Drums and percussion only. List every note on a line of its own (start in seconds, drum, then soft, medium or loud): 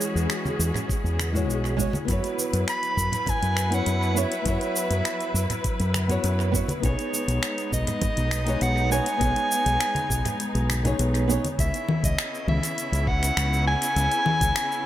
0.01 cabasa medium
0.17 cabasa soft
0.30 finger snap medium
0.30 cabasa soft
0.45 high conga medium
0.45 cabasa soft
0.60 cabasa medium
0.75 low conga medium
0.75 cabasa soft
0.89 kick loud
0.89 cabasa soft
1.06 cabasa soft
1.19 finger snap medium
1.19 high conga medium
1.19 cabasa medium
1.35 low conga medium
1.35 cabasa soft
1.50 cabasa soft
1.65 cabasa soft
1.79 kick medium
1.79 cabasa medium
1.93 high conga medium
1.93 cabasa soft
2.08 kick loud
2.08 closed hi-hat medium
2.08 cabasa soft
2.24 closed hi-hat soft
2.24 cabasa soft
2.39 cabasa medium
2.53 closed hi-hat soft
2.53 cabasa soft
2.68 finger snap medium
2.68 closed hi-hat soft
2.68 cabasa soft
2.83 closed hi-hat soft
2.83 cabasa soft
2.97 kick medium
2.97 cabasa medium
3.12 closed hi-hat soft
3.12 low conga medium
3.12 cabasa soft
3.26 kick loud
3.26 closed hi-hat medium
3.26 low conga medium
3.26 cabasa soft
3.43 closed hi-hat soft
3.43 cabasa soft
3.57 finger snap medium
3.57 cabasa medium
3.72 closed hi-hat soft
3.72 cabasa soft
3.86 closed hi-hat soft
3.86 cabasa soft
4.03 cabasa soft
4.17 cabasa medium
4.32 closed hi-hat soft
4.32 cabasa soft
4.46 kick loud
4.46 closed hi-hat soft
4.46 cabasa soft
4.61 closed hi-hat soft
4.61 cabasa soft
4.76 cabasa medium
4.91 closed hi-hat soft
4.91 cabasa soft
5.05 finger snap medium
5.05 closed hi-hat soft
5.05 cabasa soft
5.21 closed hi-hat soft
5.21 cabasa soft
5.36 cabasa medium
5.50 closed hi-hat soft
5.50 low conga medium
5.50 cabasa soft
5.64 kick loud
5.64 closed hi-hat medium
5.64 cabasa soft
5.80 closed hi-hat soft
5.80 cabasa soft
5.94 finger snap medium
5.94 high conga soft
5.94 cabasa medium
6.09 closed hi-hat soft
6.09 low conga medium
6.09 cabasa soft
6.24 closed hi-hat medium
6.24 cabasa soft
6.40 cabasa soft
6.54 kick medium
6.54 cabasa medium
6.68 closed hi-hat soft
6.68 high conga medium
6.68 cabasa soft
6.83 kick loud
6.83 closed hi-hat medium
6.83 cabasa soft
6.99 closed hi-hat soft
6.99 cabasa soft
7.14 cabasa medium
7.28 closed hi-hat soft
7.28 cabasa soft
7.43 finger snap medium
7.43 closed hi-hat medium
7.43 cabasa soft
7.58 closed hi-hat soft
7.58 cabasa soft
7.72 kick medium
7.72 cabasa medium
7.87 closed hi-hat soft
7.87 low conga medium
7.87 cabasa soft
8.01 kick loud
8.01 closed hi-hat medium
8.01 low conga medium
8.01 cabasa soft
8.17 closed hi-hat soft
8.17 cabasa soft
8.31 finger snap medium
8.31 cabasa medium
8.47 closed hi-hat soft
8.47 cabasa soft
8.61 closed hi-hat medium
8.61 cabasa soft
8.77 cabasa soft
8.92 cabasa medium
9.06 closed hi-hat soft
9.06 cabasa soft
9.21 kick loud
9.21 closed hi-hat medium
9.21 cabasa soft
9.36 closed hi-hat soft
9.36 cabasa soft
9.52 cabasa medium
9.66 closed hi-hat soft
9.66 cabasa soft
9.81 finger snap medium
9.81 closed hi-hat medium
9.81 cabasa soft
9.95 closed hi-hat soft
9.95 high conga medium
9.95 cabasa soft
10.10 kick medium
10.10 cabasa medium
10.26 closed hi-hat soft
10.26 low conga medium
10.26 cabasa soft
10.40 closed hi-hat medium
10.40 cabasa soft
10.55 closed hi-hat soft
10.55 cabasa soft
10.70 finger snap medium
10.70 high conga soft
10.70 cabasa medium
10.85 closed hi-hat soft
10.85 low conga medium
10.85 cabasa soft
10.99 closed hi-hat medium
10.99 cabasa soft
11.15 closed hi-hat soft
11.15 cabasa soft
11.30 cabasa medium
11.44 closed hi-hat soft
11.44 high conga medium
11.44 cabasa soft
11.59 kick loud
11.59 closed hi-hat medium
11.59 cabasa medium
11.74 closed hi-hat soft
11.74 cabasa soft
11.89 low conga medium
12.04 kick loud
12.04 closed hi-hat soft
12.04 cabasa medium
12.19 finger snap loud
12.19 closed hi-hat medium
12.19 cabasa soft
12.35 cabasa soft
12.48 low conga medium
12.63 closed hi-hat soft
12.63 cabasa medium
12.78 closed hi-hat medium
12.78 cabasa medium
12.93 closed hi-hat soft
12.93 cabasa soft
13.07 kick loud
13.23 finger snap soft
13.23 closed hi-hat soft
13.23 cabasa medium
13.37 finger snap loud
13.37 closed hi-hat medium
13.37 cabasa medium
13.53 cabasa soft
13.82 closed hi-hat soft
13.82 cabasa medium
13.96 closed hi-hat medium
13.96 cabasa medium
14.11 closed hi-hat soft
14.11 cabasa soft
14.26 low conga medium
14.41 kick loud
14.41 closed hi-hat soft
14.41 cabasa medium
14.56 finger snap loud
14.56 closed hi-hat medium
14.56 cabasa medium
14.72 cabasa soft